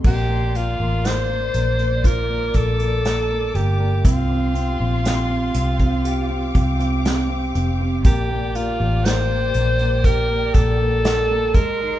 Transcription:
0.04 A#1 A#3 G4 D5 C6, kick, crash
0.29 A#3
0.55 A#3 F4, closed hi-hat
0.80 A1 A#3
1.04 A#3 C5, snare, closed hi-hat
1.29 A#3
1.54 A#1 A#3, closed hi-hat
1.79 A#3, closed hi-hat
2.04 F4 A#4 D6, kick, closed hi-hat
2.30 A#3
2.54 A#1 A#3 A4, kick, closed hi-hat
2.80 A#3, closed hi-hat
3.04 A#3, snare, closed hi-hat
3.30 A#3
3.54 G1 A#3 G4, closed hi-hat
3.80 A#3
4.05 C2 C4 F4 G4 F5 C6, kick, closed hi-hat
4.30 C4
4.55 C4, closed hi-hat
4.79 A#1 C4
5.04 C4, snare, closed hi-hat
5.30 C4
5.54 C2 C4, closed hi-hat
5.79 C4, kick, closed hi-hat
6.05 G4 D6, closed hi-hat
6.30 C4
6.55 C2 C4, kick, closed hi-hat
6.79 C4, closed hi-hat
7.05 C4, snare, closed hi-hat
7.30 C4
7.55 F1 C4, closed hi-hat
7.80 C4
8.05 A#1 A#3 G4 D5 G5, kick, closed hi-hat
8.30 A#3
8.55 A#3 F4, closed hi-hat
8.80 A1 A#3
9.05 A#3 C5, snare, closed hi-hat
9.31 A#3
9.54 A#1 A#3, closed hi-hat
9.79 A#3, closed hi-hat
10.04 G4 A#4, kick, closed hi-hat
10.31 A#3
10.54 A#1 A#3 A4, kick, closed hi-hat
10.81 A#3
11.05 A#3, snare, closed hi-hat
11.31 A#3
11.54 G#1 G#3 G#4 A#4 D#5 C6, kick, closed hi-hat
11.81 D#4

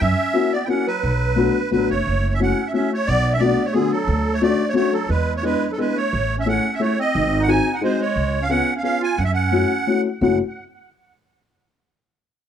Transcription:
0.00 F#2 C#4 E5
0.33 A#3 C#4 E4 F#4
0.53 B3 D5
0.64 A#3 C#4 E4 F#4 G5
0.69 C#4 F#5
0.87 F#3 B4
1.03 B1
1.36 A3 B3 D4 F#4
1.71 A1 F#3 A3 B3 D4 F#4 B4
1.90 F#1 A3 C#5
2.07 F#1
2.34 C#4 E5
2.40 A3 C#4 E4 F#4 F#5
2.67 C#4 E5
2.73 A3 C#4 E4 F#4 E5
2.93 A3 C#5
3.07 B1 B3 D5
3.33 C#4 E5
3.39 A3 B3 D4 F#4 D5
3.65 A3 C#5
3.73 D3 A3 B3 D4 F#4 G#4
3.91 F#3 A4
4.07 D2
4.34 A3 C#5
4.41 A3 C#4 D4 F#4 D5
4.68 A3 C#5
4.73 A3 C#4 D4 F#4 C#5
4.93 F#3 A4
5.09 E2 G#3 B4
5.36 A3 C#5
5.43 G#3 B3 D4 E4 G#4 B4
5.69 F#3 A4
5.78 G#3 B3 D4 E4 G#4 B4
5.95 A3 C#5
6.13 A1
6.38 C#4 E5
6.46 A3 C#4 E4 G#4 F#5
6.72 C#4 E5
6.80 A3 C#4 E4 G#4 C#5
6.99 C4 D#5
7.15 G#1
7.40 D#4 F#5
7.48 C4 D#4 F#4 G#4 G#5
7.73 D#4 F#5
7.81 G#3 C4 D#4 F#4 G#4 C5
7.99 G#3 C#5
8.16 C#2
8.41 C#4 F5
8.48 B3 C#4 F4 G#4 F#5
8.76 C#4 F5
8.82 B3 C#4 F4 G#4 F5
9.00 F4 G#5
9.17 F#2 C#4 F#5
9.24 C#4 E5
9.32 C#4 F#5
9.51 A3 C#4 E4 F#4
9.87 A3 C#4 E4 F#4
10.21 F#1 A3 C#4 E4 F#4 F#5

